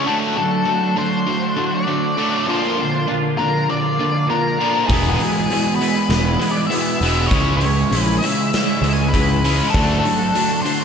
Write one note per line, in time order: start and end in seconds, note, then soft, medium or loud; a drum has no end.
0.05 0.35 D3 medium
0.05 0.35 F#3 medium
0.05 0.36 A3 medium
0.05 0.37 D4 loud
0.05 0.38 F#4 medium
0.05 0.15 A4 medium
0.36 0.65 D3 medium
0.36 0.64 F#3 medium
0.36 0.53 A3 medium
0.36 0.53 D4 medium
0.36 0.50 F#4 medium
0.36 0.98 A4 medium
0.51 0.66 A3 medium
0.51 0.68 D4 medium
0.51 0.68 F#4 medium
0.65 0.95 D3 medium
0.65 0.93 F#3 medium
0.65 0.83 A3 medium
0.65 0.83 D4 medium
0.69 0.80 F#4 medium
0.82 0.95 A3 medium
0.82 0.98 D4 medium
0.82 0.97 F#4 medium
0.96 1.42 D3 medium
0.96 1.24 F#3 medium
0.96 1.12 A3 medium
0.96 1.11 D4 medium
0.96 1.09 F#4 medium
0.96 1.75 C5 medium
1.10 1.43 A3 medium
1.10 1.42 D4 medium
1.10 1.40 F#4 medium
1.27 1.54 D3 medium
1.27 1.54 F#3 medium
1.41 1.56 A3 medium
1.41 1.57 D4 medium
1.41 1.58 F#4 medium
1.56 1.84 D3 medium
1.56 1.85 F#3 medium
1.56 1.72 A3 medium
1.56 1.71 D4 medium
1.56 1.69 F#4 medium
1.71 1.86 A3 medium
1.71 1.86 D4 medium
1.71 1.87 F#4 medium
1.75 2.52 D5 medium
1.85 2.14 D3 medium
1.85 2.15 F#3 medium
1.85 2.16 A3 medium
1.85 2.16 D4 medium
1.85 2.17 F#4 medium
2.16 2.45 D3 medium
2.16 2.47 F#3 loud
2.16 2.46 A3 medium
2.16 2.46 D4 medium
2.16 2.47 F#4 medium
2.46 3.06 A#2 medium
2.46 2.75 D3 medium
2.46 2.77 A#3 medium
2.46 2.78 D4 medium
2.46 2.79 F4 medium
2.50 2.77 F3 medium
2.50 3.05 C5 medium
2.77 3.06 A#2 medium
2.77 3.06 D3 medium
2.77 2.94 A#3 medium
2.77 2.92 D4 medium
2.77 2.90 F4 medium
2.91 3.07 A#3 medium
2.91 3.07 D4 medium
2.91 3.08 F4 medium
3.07 3.53 A#2 medium
3.07 3.36 D3 medium
3.07 3.23 A#3 loud
3.07 3.22 D4 medium
3.07 3.20 F4 loud
3.22 3.37 A#3 medium
3.22 3.38 D4 medium
3.22 3.39 F4 medium
3.37 3.66 A#2 medium
3.37 3.83 D3 medium
3.37 3.55 A#3 medium
3.37 3.53 D4 medium
3.37 3.52 F4 medium
3.37 3.66 A#4 medium
3.53 3.83 A#3 medium
3.53 3.82 D4 medium
3.53 3.80 F4 medium
3.69 3.96 A#2 medium
3.69 3.97 D3 medium
3.69 4.26 D5 medium
3.81 3.96 A#3 medium
3.81 3.97 D4 medium
3.81 3.98 F4 medium
3.96 4.26 A#2 medium
3.96 4.26 D3 medium
3.96 4.12 A#3 medium
3.96 4.11 D4 medium
3.96 4.09 F4 medium
4.11 4.26 A#3 medium
4.11 4.26 D4 medium
4.11 4.28 F4 medium
4.26 4.86 A#2 medium
4.26 4.56 D3 medium
4.26 4.57 A#3 medium
4.26 4.58 D4 medium
4.26 4.59 F4 medium
4.26 4.87 A#4 medium
4.58 4.88 A#2 loud
4.58 4.87 D3 medium
4.58 4.89 F3 loud
4.58 4.87 A#3 medium
4.58 4.88 D4 medium
4.58 4.88 F4 medium
4.87 5.15 E1 medium
4.87 5.47 E2 medium
4.87 5.48 B2 medium
4.87 5.19 E3 medium
4.87 5.20 G#3 medium
4.87 5.21 B3 medium
4.87 5.22 E4 medium
4.87 5.15 G#4 medium
4.87 kick loud
4.87 open hi-hat medium
5.16 5.38 E3 medium
5.16 5.75 G#4 medium
5.20 5.36 G#3 medium
5.20 5.34 B3 medium
5.20 5.34 E4 medium
5.20 open hi-hat soft
5.34 5.49 E3 medium
5.34 5.50 G#3 medium
5.34 5.49 B3 medium
5.34 5.51 E4 medium
5.48 5.95 E2 medium
5.48 5.95 B2 medium
5.48 5.66 E3 loud
5.48 5.65 G#3 loud
5.48 5.64 B3 medium
5.48 5.63 E4 loud
5.48 open hi-hat medium
5.64 5.79 E3 soft
5.64 5.80 G#3 medium
5.64 5.80 B3 medium
5.64 5.81 E4 medium
5.76 5.96 E3 medium
5.76 6.56 B4 medium
5.80 5.95 G#3 medium
5.80 5.94 B3 medium
5.80 5.93 E4 medium
5.80 open hi-hat medium
5.95 6.26 E3 medium
5.95 6.25 G#3 medium
5.95 6.24 B3 medium
5.95 6.23 E4 medium
6.09 6.36 E1 medium
6.09 6.38 E3 medium
6.09 6.38 G#3 medium
6.09 snare medium
6.09 open hi-hat medium
6.24 6.38 E3 medium
6.24 6.39 G#3 medium
6.24 6.40 B3 medium
6.24 6.41 E4 medium
6.39 6.57 E3 medium
6.39 6.56 G#3 medium
6.39 6.55 B3 medium
6.39 6.54 E4 medium
6.39 open hi-hat soft
6.51 6.67 D5 medium
6.56 6.70 E3 medium
6.56 6.72 G#3 medium
6.56 6.72 B3 medium
6.56 6.72 E4 medium
6.67 7.30 E2 medium
6.67 7.26 E5 medium
6.71 7.29 B2 medium
6.71 7.01 E3 medium
6.71 7.02 G#3 medium
6.71 7.03 B3 medium
6.71 7.04 E4 loud
6.71 open hi-hat medium
7.01 7.27 E1 medium
7.01 7.30 E3 medium
7.01 7.30 G#3 medium
7.01 7.31 B3 medium
7.01 open hi-hat soft
7.05 7.32 E4 medium
7.27 7.83 C#2 loud
7.27 7.89 C#3 medium
7.27 7.56 C#5 medium
7.27 kick loud
7.27 open hi-hat medium
7.32 7.60 E3 medium
7.32 7.61 G#3 medium
7.32 7.62 C#4 medium
7.32 7.63 E4 medium
7.57 8.02 C#5 medium
7.61 7.90 C#3 medium
7.61 7.90 E3 medium
7.61 7.79 G#3 medium
7.61 7.77 C#4 medium
7.61 7.75 E4 medium
7.61 open hi-hat soft
7.76 7.91 G#3 medium
7.76 7.91 C#4 medium
7.76 7.92 E4 medium
7.90 8.18 A#1 medium
7.90 8.37 C#3 medium
7.90 8.20 E3 medium
7.90 8.07 G#3 loud
7.90 8.06 C#4 loud
7.90 8.04 E4 loud
7.90 open hi-hat medium
7.95 8.21 C#3 medium
8.02 8.23 E4 medium
8.02 8.16 B4 medium
8.07 8.21 G#3 medium
8.07 8.22 C#4 medium
8.18 8.67 E3 medium
8.18 8.92 E5 medium
8.23 8.50 C#3 medium
8.23 8.38 G#3 medium
8.23 8.37 C#4 medium
8.23 8.35 E4 medium
8.23 open hi-hat medium
8.36 8.68 G#3 medium
8.36 8.66 C#4 medium
8.36 8.65 E4 medium
8.53 8.81 C#3 medium
8.53 8.81 G#3 medium
8.53 snare medium
8.53 open hi-hat medium
8.66 8.81 G#3 medium
8.66 8.83 C#4 medium
8.66 8.83 E4 medium
8.81 9.60 C#2 medium
8.81 9.11 C#3 medium
8.81 9.13 E3 medium
8.81 8.99 G#3 medium
8.81 8.98 C#4 medium
8.81 8.96 E4 medium
8.81 open hi-hat soft
8.93 9.11 G#5 medium
8.97 9.13 G#3 medium
8.97 9.14 C#4 medium
8.97 9.14 E4 medium
9.08 9.70 B4 medium
9.13 9.72 C#3 medium
9.13 9.42 E3 medium
9.13 9.43 G#3 medium
9.13 9.44 C#4 medium
9.13 9.45 E4 medium
9.13 kick medium
9.13 open hi-hat medium
9.43 9.72 C#3 medium
9.43 9.72 E3 medium
9.43 9.72 G#3 medium
9.43 9.73 C#4 medium
9.43 9.73 E4 medium
9.43 open hi-hat soft
9.70 10.02 D3 medium
9.70 10.04 A3 medium
9.70 9.98 A4 medium
9.74 10.00 D2 loud
9.74 10.03 F#3 medium
9.74 10.05 D4 medium
9.74 10.05 F#4 medium
9.74 kick loud
9.74 open hi-hat medium
10.00 10.61 A4 medium
10.04 10.32 D3 medium
10.04 10.32 F#3 medium
10.04 10.20 A3 medium
10.04 10.19 D4 medium
10.04 10.17 F#4 medium
10.04 open hi-hat soft
10.19 10.33 A3 medium
10.19 10.35 D4 medium
10.19 10.35 F#4 medium
10.33 10.63 D3 medium
10.33 10.62 F#3 medium
10.33 10.52 A3 medium
10.33 10.51 D4 loud
10.33 10.48 F#4 loud
10.33 open hi-hat medium
10.49 10.64 A3 medium
10.49 10.65 D4 medium
10.49 10.66 F#4 medium
10.62 10.84 D3 medium
10.62 10.84 F#3 medium
10.62 10.82 A3 medium
10.62 10.80 D4 medium
10.62 10.84 C5 medium
10.62 open hi-hat soft
10.67 10.79 F#4 medium
10.80 10.84 F#4 medium